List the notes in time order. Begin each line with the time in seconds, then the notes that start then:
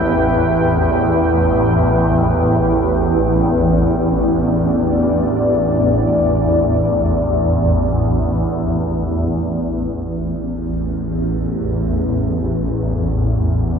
Already playing: A1 E2 E4 B4 E5 G5
2.90 D5
8.90 A1 E2